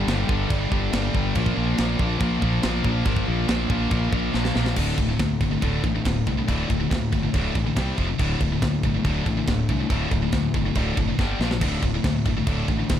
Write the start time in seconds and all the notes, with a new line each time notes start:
Already playing: G2 D3 G3
0.07 G1 G2 D3 G3, snare, crash
0.29 G1 G2 D3 G3, kick
0.50 G1 G2 D3 G3, kick, crash
0.70 G1 G2 D3 G3, kick
0.93 G1 G2 D3 G3, snare, crash
1.14 G1 G2 D3 G3, kick
1.35 A#1 A#2 F3 A#3, kick, crash
1.46 kick
1.57 A#1 A#2 F3 A#3
1.78 A#1 A#2 F3 A#3, snare, crash
1.99 A#1 A#2 F3 A#3, kick
2.20 A#1 A#2 F3 A#3, kick, crash
2.42 A#1 A#2 F3 A#3, kick
2.63 A#1 A#2 F3 A#3, snare, crash
2.85 A#1 A#2 F3 A#3, kick
3.05 G1 A#2 F3 A#3, kick, crash
3.16 kick
3.26 A#1 A#2 F3 A#3
3.48 A#1 A#2 F3 A#3, snare, crash
3.70 A#1 A#2 F3 A#3, kick
3.91 A#1 A#2 F3 A#3, kick, crash
4.12 A#1 A#2 F3 A#3, kick
4.34 A#1 A#2 F3 A#3, snare
4.45 snare
4.55 A#1 A#2 F3 A#3, snare
4.66 snare
4.76 D1 D2 A2 D3, kick, crash
4.98 D1 D2 A2, kick, crash
5.09 D2 A2
5.19 D2 A2, kick, snare, crash
5.41 G1 D2 A2, kick, crash
5.51 D2 A2
5.62 D1 D2 A2 D3, kick, crash
5.84 A1 D2 A2 D3, kick, crash
5.95 D2 A2
6.05 D1 D2 A2 D3, kick, snare, crash
6.27 C2 D2 A2, kick, crash
6.38 D2 A2
6.48 D1 D2 A2 D3, kick, crash
6.70 D1 D2 A2, kick, crash
6.80 D2 A2
6.90 D2 A2, kick, snare, crash
7.12 G1 D2 A2, kick, crash
7.23 D2 A2
7.34 D1 D2 A2 D3, kick, crash
7.54 A1 D2 A2 D3, kick, crash
7.65 D2 A2
7.76 C2 C3 G3 C4, kick, snare, crash
7.98 F1 F2 C3 F3, kick, crash
8.09 F2 C3
8.19 D1 D2 A2 D3, kick, crash
8.41 D1 D2 A2, kick, crash
8.52 D2 A2
8.62 D2 A2, kick, snare, crash
8.83 G1 D2 A2, kick, crash
8.95 D2 A2
9.05 D1 D2 A2 D3, kick, crash
9.25 A1 D2 A2 D3, kick, crash
9.37 D2 A2
9.48 D1 D2 A2 D3, kick, snare, crash
9.69 C2 D2 A2, kick, crash
9.81 D2 A2
9.90 D1 D2 A2 D3, kick, crash
10.11 D1 D2 A2, kick, crash
10.22 D2 A2
10.32 D2 A2, kick, snare, crash
10.54 G1 D2 A2, kick, crash
10.65 D2 A2
10.75 D1 D2 A2 D3, kick, crash
10.97 F#1 D2 A2 D3, kick, crash
11.09 D2 A2
11.19 G1 G2 D3 G3, kick, snare
11.40 A#1 A#2 F3 A#3, snare
11.51 A#2 F3, snare
11.61 D1 D2 A2 D3, kick, crash
11.82 D1 D2 A2, kick, crash
11.94 D2 A2
12.04 D2 A2, kick, snare, crash
12.25 G1 D2 A2, kick, crash
12.37 D2 A2
12.46 D1 D2 A2 D3, kick, crash
12.68 A1 D2 A2 D3, kick, crash
12.79 D2 A2
12.89 D1 D2 A2 D3, kick, snare, crash